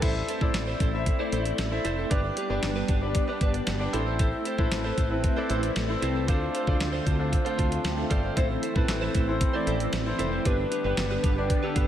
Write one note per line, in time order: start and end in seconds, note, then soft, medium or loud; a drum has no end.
0.01 0.21 A1 loud
0.01 2.09 A3 medium
0.01 2.09 C4 medium
0.01 0.27 E4 medium
0.01 0.23 E4 medium
0.01 2.09 E4 medium
0.01 0.27 A4 medium
0.01 0.15 A4 medium
0.01 0.27 C5 medium
0.01 0.14 C5 loud
0.01 0.27 E5 medium
0.01 kick loud
0.01 closed hi-hat medium
0.01 crash medium
0.15 muted clean electric guitar stroke soft
0.28 0.42 E4 medium
0.28 0.41 A4 medium
0.28 0.40 C5 medium
0.28 closed hi-hat medium
0.41 0.51 A1 medium
0.41 0.74 E4 medium
0.41 0.53 E4 soft
0.41 0.75 A4 medium
0.41 0.54 A4 medium
0.41 0.55 C5 medium
0.41 0.75 C5 medium
0.41 0.75 D5 medium
0.41 kick medium
0.54 0.73 A1 medium
0.54 muted clean electric guitar stroke soft
0.54 snare loud
0.54 closed hi-hat medium
0.67 0.79 E4 medium
0.67 0.80 A4 medium
0.67 0.81 C5 medium
0.80 1.08 A1 loud
0.80 0.97 E4 medium
0.80 0.94 A4 medium
0.80 0.92 C5 medium
0.80 kick medium
0.80 closed hi-hat medium
0.93 1.10 E4 medium
0.93 1.10 A4 medium
0.93 1.11 C5 medium
0.93 1.11 E5 medium
0.93 muted clean electric guitar stroke soft
1.06 muted clean electric guitar stroke soft
1.06 kick medium
1.06 closed hi-hat medium
1.19 1.52 E4 medium
1.19 1.31 E4 soft
1.19 1.53 A4 medium
1.19 1.32 A4 medium
1.19 1.33 C5 medium
1.19 1.53 C5 medium
1.19 1.53 D5 medium
1.32 1.51 A1 loud
1.32 1.53 E4 medium
1.32 1.45 A4 medium
1.32 1.44 C5 loud
1.32 closed hi-hat medium
1.45 muted clean electric guitar stroke soft
1.45 closed hi-hat medium
1.58 1.77 A1 medium
1.58 muted clean electric guitar stroke soft
1.58 snare loud
1.58 closed hi-hat medium
1.71 1.96 E4 medium
1.71 1.96 A4 medium
1.71 1.97 C5 medium
1.71 1.97 E5 medium
1.71 muted clean electric guitar stroke soft
1.85 2.03 F1 medium
1.85 1.98 E4 medium
1.85 1.97 A4 medium
1.85 1.96 C5 medium
1.85 closed hi-hat medium
1.98 2.10 E4 medium
1.98 2.11 A4 medium
1.98 2.12 C5 medium
2.10 2.29 G1 medium
2.10 3.91 G3 medium
2.10 3.91 B3 medium
2.10 2.35 D4 medium
2.10 2.32 D4 medium
2.10 3.91 D4 medium
2.10 2.35 G4 medium
2.10 2.24 G4 medium
2.10 2.36 B4 medium
2.10 2.23 B4 medium
2.10 2.36 D5 medium
2.10 kick loud
2.10 closed hi-hat medium
2.24 muted clean electric guitar stroke soft
2.37 2.50 D4 medium
2.37 2.50 G4 medium
2.37 2.49 B4 medium
2.37 closed hi-hat medium
2.49 2.59 G1 medium
2.49 2.83 D4 medium
2.49 2.62 D4 soft
2.49 2.83 G4 medium
2.49 2.62 G4 soft
2.49 2.63 B4 medium
2.49 2.83 B4 medium
2.49 2.83 D5 medium
2.63 2.82 G1 medium
2.63 snare loud
2.63 closed hi-hat medium
2.76 2.88 D4 medium
2.76 2.89 G4 medium
2.76 2.89 B4 medium
2.88 3.17 G1 loud
2.88 3.06 D4 medium
2.88 3.02 G4 medium
2.88 3.01 B4 medium
2.88 kick medium
2.88 closed hi-hat medium
3.02 3.18 D4 medium
3.02 3.18 G4 medium
3.02 3.19 B4 medium
3.02 3.19 D5 medium
3.02 muted clean electric guitar stroke soft
3.15 muted clean electric guitar stroke soft
3.15 kick medium
3.15 closed hi-hat medium
3.28 3.61 D4 medium
3.28 3.40 D4 medium
3.28 3.61 G4 medium
3.28 3.41 G4 medium
3.28 3.42 B4 medium
3.28 3.61 B4 medium
3.28 3.62 D5 medium
3.41 3.60 G1 medium
3.41 3.62 D4 medium
3.41 3.54 G4 medium
3.41 3.53 B4 medium
3.41 kick medium
3.41 closed hi-hat medium
3.54 muted clean electric guitar stroke soft
3.54 closed hi-hat medium
3.67 3.86 G1 loud
3.67 muted clean electric guitar stroke soft
3.67 snare loud
3.67 closed hi-hat medium
3.79 3.93 D4 medium
3.79 3.93 G4 medium
3.79 3.93 B4 medium
3.79 3.94 D5 medium
3.79 muted clean electric guitar stroke soft
3.92 4.31 A1 medium
3.92 10.42 A3 medium
3.92 4.45 C4 medium
3.92 8.33 C4 medium
3.92 4.45 E4 medium
3.92 4.07 E4 medium
3.92 6.26 E4 medium
3.92 4.45 A4 medium
3.92 4.06 A4 medium
3.92 4.46 C5 medium
3.92 4.05 C5 medium
3.92 closed hi-hat medium
4.06 4.18 E4 medium
4.06 4.19 A4 medium
4.06 4.20 C5 medium
4.19 4.40 E4 medium
4.19 4.33 A4 medium
4.19 4.32 C5 medium
4.19 kick loud
4.19 closed hi-hat medium
4.33 muted clean electric guitar stroke soft
4.45 4.59 E4 medium
4.45 4.58 A4 medium
4.45 4.57 C5 medium
4.45 closed hi-hat medium
4.58 4.68 A1 medium
4.58 4.91 C4 medium
4.58 4.91 E4 medium
4.58 4.70 E4 soft
4.58 4.92 A4 medium
4.58 4.71 A4 soft
4.58 4.92 B4 medium
4.58 4.71 C5 medium
4.58 kick medium
4.72 4.90 A1 medium
4.72 snare loud
4.72 closed hi-hat medium
4.84 4.96 E4 medium
4.84 4.97 A4 medium
4.84 4.98 C5 medium
4.97 5.26 A1 medium
4.97 5.14 E4 medium
4.97 5.11 A4 soft
4.97 5.09 C5 medium
4.97 kick medium
4.97 closed hi-hat medium
5.10 5.27 C4 medium
5.10 5.27 E4 medium
5.10 5.28 A4 medium
5.10 5.28 B4 medium
5.10 muted clean electric guitar stroke soft
5.23 muted clean electric guitar stroke soft
5.23 kick medium
5.23 closed hi-hat medium
5.36 5.70 C4 medium
5.36 5.70 E4 medium
5.36 5.48 E4 soft
5.36 5.70 A4 medium
5.36 5.49 A4 medium
5.36 5.50 C5 medium
5.36 5.70 D5 medium
5.49 5.69 A1 loud
5.49 5.70 E4 medium
5.49 5.63 A4 medium
5.49 5.62 C5 loud
5.49 closed hi-hat medium
5.63 muted clean electric guitar stroke soft
5.63 closed hi-hat medium
5.76 5.95 A1 loud
5.76 snare loud
5.76 closed hi-hat loud
5.88 6.14 C4 medium
5.88 6.14 E4 medium
5.88 6.14 A4 medium
5.88 6.14 C5 medium
5.88 muted clean electric guitar stroke soft
6.02 6.28 C2 medium
6.02 6.16 E4 medium
6.02 6.15 A4 medium
6.02 6.14 C5 medium
6.02 closed hi-hat medium
6.15 6.28 E4 soft
6.15 6.28 A4 soft
6.15 6.29 C5 medium
6.28 6.47 D2 loud
6.28 8.35 D3 medium
6.28 6.53 D4 medium
6.28 6.49 F4 medium
6.28 6.53 F4 medium
6.28 8.35 F4 medium
6.28 6.53 A4 medium
6.28 6.41 A4 medium
6.28 6.53 C5 medium
6.28 6.40 C5 medium
6.28 kick loud
6.28 closed hi-hat medium
6.41 muted clean electric guitar stroke soft
6.54 6.67 F4 medium
6.54 6.67 A4 medium
6.54 6.65 C5 medium
6.54 closed hi-hat medium
6.67 6.77 D2 medium
6.67 7.00 D4 medium
6.67 7.01 F4 medium
6.67 6.79 F4 soft
6.67 6.80 A4 medium
6.67 7.01 A4 medium
6.67 6.80 C5 medium
6.67 7.01 D5 medium
6.67 kick medium
6.80 6.99 D2 loud
6.80 muted clean electric guitar stroke soft
6.80 snare loud
6.80 closed hi-hat medium
6.93 7.05 F4 medium
6.93 7.05 A4 medium
6.93 7.06 C5 medium
7.06 7.34 D2 loud
7.06 7.23 F4 medium
7.06 7.19 A4 medium
7.06 7.18 C5 medium
7.06 kick medium
7.06 closed hi-hat medium
7.19 7.36 D4 medium
7.19 7.36 F4 medium
7.19 7.36 A4 medium
7.19 7.36 C5 medium
7.19 muted clean electric guitar stroke soft
7.32 muted clean electric guitar stroke soft
7.32 kick medium
7.32 closed hi-hat medium
7.45 7.78 D4 medium
7.45 7.79 F4 medium
7.45 7.57 F4 medium
7.45 7.79 A4 medium
7.45 7.58 A4 medium
7.45 7.58 C5 medium
7.45 7.79 C5 medium
7.45 closed hi-hat soft
7.58 7.77 D2 medium
7.58 7.79 F4 medium
7.58 7.71 A4 medium
7.58 7.70 C5 medium
7.58 7.83 A5 medium
7.58 kick medium
7.58 closed hi-hat medium
7.71 muted clean electric guitar stroke soft
7.71 closed hi-hat medium
7.84 8.03 D2 medium
7.84 8.09 F5 medium
7.84 7.98 G5 medium
7.84 muted clean electric guitar stroke soft
7.84 snare loud
7.84 closed hi-hat loud
7.97 8.10 E5 medium
7.97 8.10 A5 medium
7.97 muted clean electric guitar stroke soft
8.10 8.29 G1 medium
8.10 8.24 F4 medium
8.10 8.23 A4 medium
8.10 8.22 C5 medium
8.10 8.23 D5 medium
8.10 8.23 G5 medium
8.10 kick medium
8.10 closed hi-hat medium
8.23 8.36 F4 soft
8.23 8.36 A4 medium
8.23 8.37 C5 medium
8.23 8.36 C5 soft
8.23 8.49 F5 medium
8.36 8.55 A1 loud
8.36 10.44 E3 medium
8.36 8.61 C4 medium
8.36 10.44 C4 medium
8.36 8.57 E4 medium
8.36 8.62 E4 medium
8.36 8.62 A4 medium
8.36 8.49 A4 medium
8.36 8.62 C5 loud
8.36 8.48 C5 medium
8.36 kick loud
8.36 closed hi-hat medium
8.50 muted clean electric guitar stroke soft
8.62 8.76 E4 medium
8.62 8.75 A4 medium
8.62 8.74 C5 medium
8.62 closed hi-hat medium
8.75 8.85 A1 loud
8.75 9.09 C4 medium
8.75 9.09 E4 medium
8.75 8.87 E4 soft
8.75 9.09 A4 medium
8.75 8.88 A4 medium
8.75 9.09 B4 medium
8.75 8.89 C5 medium
8.75 kick medium
8.88 9.07 A1 medium
8.88 muted clean electric guitar stroke soft
8.88 snare loud
8.88 closed hi-hat medium
9.01 9.13 E4 medium
9.01 9.14 A4 medium
9.01 9.15 C5 medium
9.14 9.43 A1 loud
9.14 9.31 E4 medium
9.14 9.28 A4 medium
9.14 9.26 C5 medium
9.14 kick medium
9.14 closed hi-hat medium
9.27 9.44 C4 medium
9.27 9.45 E4 medium
9.27 9.45 A4 medium
9.27 9.45 C5 medium
9.27 muted clean electric guitar stroke soft
9.41 muted clean electric guitar stroke soft
9.41 kick medium
9.41 closed hi-hat medium
9.53 9.87 C4 medium
9.53 9.87 E4 medium
9.53 9.65 E4 medium
9.53 9.66 A4 medium
9.53 9.88 A4 medium
9.53 9.67 C5 medium
9.53 9.88 D5 medium
9.67 9.86 A1 loud
9.67 9.88 E4 medium
9.67 9.80 A4 medium
9.67 9.79 C5 medium
9.67 closed hi-hat medium
9.80 muted clean electric guitar stroke soft
9.80 closed hi-hat medium
9.93 10.12 A1 loud
9.93 muted clean electric guitar stroke soft
9.93 snare loud
9.93 closed hi-hat medium
10.06 10.31 C4 medium
10.06 10.31 E4 medium
10.06 10.32 A4 medium
10.06 10.32 C5 medium
10.06 muted clean electric guitar stroke soft
10.19 10.38 F1 medium
10.19 10.32 E4 medium
10.19 10.32 A4 medium
10.19 10.31 C5 medium
10.19 closed hi-hat medium
10.32 10.45 E4 medium
10.32 10.46 A4 medium
10.32 10.46 C5 medium
10.45 10.64 G1 loud
10.45 11.88 D3 medium
10.45 11.88 G3 medium
10.45 10.70 B3 medium
10.45 11.88 B3 medium
10.45 10.66 D4 medium
10.45 10.71 D4 medium
10.45 10.71 G4 medium
10.45 10.59 G4 medium
10.45 10.71 B4 medium
10.45 10.57 B4 medium
10.45 kick loud
10.45 closed hi-hat medium
10.59 muted clean electric guitar stroke soft
10.71 10.85 D4 medium
10.71 10.84 G4 medium
10.71 10.83 B4 medium
10.71 closed hi-hat medium
10.84 10.94 G1 medium
10.84 11.18 B3 medium
10.84 11.18 D4 medium
10.84 10.96 D4 soft
10.84 10.97 G4 medium
10.84 11.18 G4 medium
10.84 10.98 B4 medium
10.84 11.18 B4 medium
10.97 11.16 G1 medium
10.97 muted clean electric guitar stroke soft
10.97 snare loud
10.97 closed hi-hat medium
11.11 11.22 D4 medium
11.11 11.23 G4 medium
11.11 11.24 B4 medium
11.23 11.52 G1 medium
11.23 11.41 D4 medium
11.23 11.37 G4 medium
11.23 11.36 B4 medium
11.23 kick medium
11.23 closed hi-hat medium
11.37 11.53 B3 medium
11.37 11.54 D4 medium
11.37 11.54 G4 medium
11.37 11.54 D5 medium
11.37 muted clean electric guitar stroke soft
11.50 muted clean electric guitar stroke soft
11.50 kick medium
11.50 closed hi-hat medium
11.63 11.88 B3 medium
11.63 11.88 D4 medium
11.63 11.74 D4 soft
11.63 11.88 G4 medium
11.63 11.75 G4 medium
11.63 11.88 A4 medium
11.63 11.76 B4 medium
11.75 11.88 G1 medium
11.75 11.88 D4 medium
11.75 11.88 G4 medium
11.75 11.88 B4 medium
11.75 11.88 B5 medium
11.75 kick medium
11.75 closed hi-hat medium